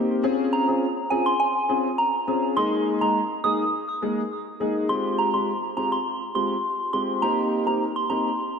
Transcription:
Already playing: grand piano A#3 C4 D#4 G4
0.23 grand piano C4 C#4 F4 G#4
0.53 synth bell A#5
0.68 grand piano C4 C#4 F4 G#4
1.10 grand piano C4 C#4 F4 G#4, synth bell G#5
1.26 synth bell C6
1.40 synth bell G#5
1.69 grand piano C4 C#4 F4 G#4
1.98 synth bell A#5
2.27 grand piano C4 C#4 F4 G#4
2.56 grand piano G#3 A#3 D#4 G#4, synth bell C6
3.01 grand piano G#3 A#3 D#4 G#4, synth bell A#5
3.44 grand piano G#3 A#3 D#4 G#4, synth bell D#6
4.02 grand piano G#3 A#3 D#4 G#4
4.60 grand piano G#3 A#3 D#4 G#4
4.89 grand piano G#3 C4 F4 G4, synth bell C6
5.18 synth bell A#5
5.34 grand piano G#3 C4 F4 G4, synth bell C6
5.76 grand piano G#3 C4 F4 G4, synth bell A#5
5.92 synth bell C6
6.35 grand piano G#3 C4 F4 G4, synth bell C6
6.93 grand piano G#3 C4 F4 G4, synth bell C6
7.22 grand piano A#3 C4 D#4 G4, synth bell A#5
7.67 grand piano A#3 C4 D#4 G4, synth bell A#5
7.96 synth bell C6
8.10 grand piano A#3 C4 D#4 G4, synth bell A#5

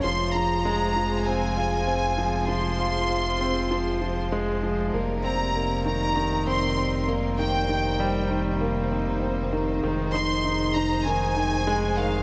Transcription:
0.04 analog synth bass F1, string section C3 G#3 F4 C5, grand piano F3, violin section C6
0.35 grand piano F3, violin section A#5
0.65 grand piano G#3
0.96 grand piano F3
1.26 grand piano C4, violin section G#5
1.57 grand piano F4
1.87 grand piano C4
2.18 grand piano F3
2.48 grand piano F3, violin section C6
2.79 grand piano F4
3.10 grand piano F4
3.41 grand piano C4
3.71 grand piano F3
4.02 grand piano F3
4.32 grand piano G#3
4.63 grand piano F3
4.93 analog synth bass F1, string section G3 D#4 A#4, grand piano A#3
5.24 grand piano C4, violin section A#5
5.55 grand piano A#3
5.85 grand piano D#3, violin section A#5
6.16 grand piano D#3
6.47 grand piano C4, violin section C6
6.77 grand piano C4
7.08 grand piano A#3
7.39 grand piano D#3, string section C5, violin section G5
7.69 grand piano D#3
8.00 grand piano G3
8.30 grand piano D#3
8.61 grand piano A#3
8.92 grand piano C4
9.22 grand piano C4
9.53 grand piano D#3
9.84 analog synth bass F1, grand piano D#3, string section G#3
10.14 grand piano D#4, violin section C6
10.45 grand piano D#4
10.75 grand piano D#4, violin section A#5
11.05 grand piano D#3, violin section G#5
11.37 grand piano D#3
11.67 grand piano G#3
11.97 grand piano D#3, violin section F5

